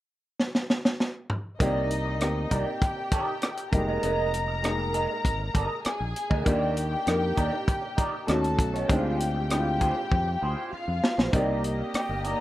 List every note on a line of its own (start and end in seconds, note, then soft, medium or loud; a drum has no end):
0.40 snare medium
0.55 snare medium
0.70 snare medium
0.85 snare medium
1.00 snare medium
1.30 mid tom medium
1.59 2.21 C2 medium
1.59 2.05 A#3 medium
1.59 2.05 C4 medium
1.59 1.88 D#4 medium
1.59 2.49 D#4 medium
1.59 2.06 D#4 medium
1.59 2.06 G4 medium
1.59 1.88 A#4 medium
1.59 1.88 D5 medium
1.59 2.49 D#5 medium
1.59 kick medium
1.59 closed hi-hat medium
1.91 closed hi-hat medium
2.05 muted clean electric guitar stroke soft
2.20 2.45 D2 medium
2.20 3.10 A#3 medium
2.20 3.11 C4 medium
2.20 3.11 D#4 medium
2.20 3.12 G4 medium
2.20 cross-stick medium
2.20 closed hi-hat medium
2.36 muted clean electric guitar stroke soft
2.51 2.63 C2 medium
2.51 2.68 D#4 medium
2.51 3.70 G4 medium
2.51 2.67 A#4 medium
2.51 2.65 D5 medium
2.51 3.71 G5 medium
2.51 kick medium
2.51 closed hi-hat medium
2.66 muted clean electric guitar stroke soft
2.82 kick medium
2.82 cross-stick soft
2.82 closed hi-hat medium
2.97 muted clean electric guitar stroke soft
3.12 3.32 D#4 medium
3.12 3.27 A#4 medium
3.12 3.26 D5 medium
3.12 kick medium
3.12 closed hi-hat medium
3.27 muted clean electric guitar stroke soft
3.42 muted clean electric guitar stroke soft
3.42 cross-stick loud
3.42 closed hi-hat medium
3.57 muted clean electric guitar stroke soft
3.57 closed hi-hat soft
3.72 3.97 F1 medium
3.72 3.79 G3 medium
3.72 4.45 A#3 medium
3.72 4.46 D#4 medium
3.72 4.46 G4 medium
3.72 5.81 A#4 medium
3.72 5.81 A#5 medium
3.72 kick medium
3.72 closed hi-hat medium
3.78 4.48 G#3 medium
3.88 4.01 G#4 soft
3.88 4.02 A#4 soft
3.88 4.03 D#5 medium
4.03 5.06 F1 medium
4.03 4.31 G#4 medium
4.03 4.31 A#4 medium
4.03 4.31 D#5 medium
4.03 closed hi-hat medium
4.34 closed hi-hat medium
4.48 muted clean electric guitar stroke soft
4.63 5.53 G#3 medium
4.63 5.54 A#3 medium
4.63 5.54 D#4 medium
4.63 5.55 G#4 medium
4.63 cross-stick medium
4.63 closed hi-hat medium
4.79 muted clean electric guitar stroke soft
4.94 5.11 G#4 medium
4.94 5.08 A#4 medium
4.94 5.07 D#5 medium
4.94 closed hi-hat medium
5.09 muted clean electric guitar stroke soft
5.25 5.49 G#1 medium
5.25 kick medium
5.25 closed hi-hat medium
5.39 muted clean electric guitar stroke soft
5.54 5.67 G1 medium
5.54 5.75 G#4 medium
5.54 5.70 A#4 medium
5.54 5.69 D#5 medium
5.54 kick medium
5.54 closed hi-hat medium
5.70 muted clean electric guitar stroke soft
5.85 6.45 G#4 medium
5.85 6.45 G#5 medium
5.85 muted clean electric guitar stroke soft
5.85 muted fingered electric bass stroke soft
5.85 cross-stick medium
5.85 closed hi-hat medium
6.00 6.13 A#1 medium
6.00 muted clean electric guitar stroke soft
6.16 closed hi-hat medium
6.30 6.43 D2 medium
6.30 6.45 G#4 medium
6.30 6.45 A#4 medium
6.30 6.47 D#5 medium
6.30 kick medium
6.45 6.94 D#2 medium
6.45 6.91 A#3 medium
6.45 6.91 D4 medium
6.45 6.74 D#4 medium
6.45 6.92 D#4 medium
6.45 8.25 G4 medium
6.45 6.92 G4 medium
6.45 6.74 A#4 medium
6.45 6.75 D5 medium
6.45 8.25 G5 medium
6.45 kick medium
6.45 closed hi-hat medium
6.77 closed hi-hat medium
6.91 muted clean electric guitar stroke soft
7.06 7.31 F2 medium
7.06 7.97 A#3 medium
7.06 7.97 D4 medium
7.06 7.98 D#4 medium
7.06 7.98 A#4 medium
7.06 cross-stick medium
7.06 closed hi-hat medium
7.22 muted clean electric guitar stroke soft
7.36 7.50 D#2 medium
7.36 7.54 D#4 medium
7.36 7.52 A#4 medium
7.36 7.51 D5 medium
7.36 kick medium
7.36 closed hi-hat medium
7.52 muted clean electric guitar stroke soft
7.68 kick medium
7.68 closed hi-hat medium
7.82 muted clean electric guitar stroke soft
7.97 8.14 D#4 medium
7.97 8.12 A#4 medium
7.97 8.11 D5 medium
7.97 kick medium
7.97 closed hi-hat medium
8.12 muted clean electric guitar stroke soft
8.27 8.59 D#2 medium
8.27 8.77 A3 medium
8.27 8.77 C#4 medium
8.27 8.77 D#4 medium
8.27 8.78 F#4 medium
8.27 8.88 A4 medium
8.27 8.88 A5 medium
8.27 muted clean electric guitar stroke soft
8.27 cross-stick medium
8.27 closed hi-hat medium
8.43 muted clean electric guitar stroke soft
8.43 closed hi-hat soft
8.59 8.83 B1 medium
8.59 kick medium
8.59 closed hi-hat medium
8.74 8.88 D#4 soft
8.74 8.89 F#4 medium
8.74 8.90 C#5 medium
8.74 closed hi-hat soft
8.88 9.92 D2 medium
8.88 9.34 G#3 medium
8.88 9.35 C4 medium
8.88 9.35 D4 medium
8.88 8.97 D#4 medium
8.88 9.17 F4 medium
8.88 10.68 G4 medium
8.88 9.17 G#4 medium
8.88 9.18 C5 medium
8.88 10.68 G5 medium
8.88 kick loud
8.88 closed hi-hat medium
8.98 9.39 F4 medium
9.20 closed hi-hat medium
9.35 muted clean electric guitar stroke soft
9.50 10.40 G#3 medium
9.50 10.41 C4 medium
9.50 10.41 D4 medium
9.50 9.58 E4 medium
9.50 cross-stick medium
9.50 closed hi-hat medium
9.59 10.45 F4 medium
9.66 muted clean electric guitar stroke soft
9.80 9.97 F4 medium
9.80 9.96 G#4 medium
9.80 9.95 C5 medium
9.80 kick medium
9.80 closed hi-hat medium
9.96 muted clean electric guitar stroke soft
10.12 10.36 F2 medium
10.12 muted clean electric guitar stroke soft
10.12 kick medium
10.27 muted clean electric guitar stroke soft
10.42 10.54 D2 medium
10.42 10.55 F4 medium
10.42 10.55 G#4 medium
10.42 10.56 C5 medium
10.57 10.71 F4 soft
10.57 10.71 G#4 soft
10.57 10.70 C5 soft
10.71 11.31 F4 medium
10.71 11.31 F5 medium
10.71 muted fingered electric bass stroke soft
10.71 muted clean electric guitar stroke soft
10.88 11.00 F2 medium
10.88 muted clean electric guitar stroke soft
11.04 snare medium
11.18 11.30 A#1 medium
11.18 11.32 F4 soft
11.18 11.33 G#4 medium
11.18 11.34 C5 medium
11.18 snare medium
11.32 11.81 C2 medium
11.32 12.23 A#3 medium
11.32 12.40 A#3 medium
11.32 12.23 C4 medium
11.32 11.61 D#4 medium
11.32 12.24 D#4 medium
11.32 12.40 G4 medium
11.32 12.25 G4 medium
11.32 11.61 A#4 medium
11.32 11.61 D5 medium
11.32 12.40 D#5 medium
11.32 kick medium
11.32 closed hi-hat medium
11.64 closed hi-hat medium
11.79 muted clean electric guitar stroke soft
11.94 12.29 G5 medium
11.94 muted fingered electric bass stroke soft
11.94 cross-stick medium
11.94 closed hi-hat medium
12.09 12.33 G1 medium
12.09 muted clean electric guitar stroke soft
12.24 12.40 D#4 medium
12.24 12.39 A#4 medium
12.24 12.38 D5 medium
12.24 12.40 A#5 medium
12.24 closed hi-hat medium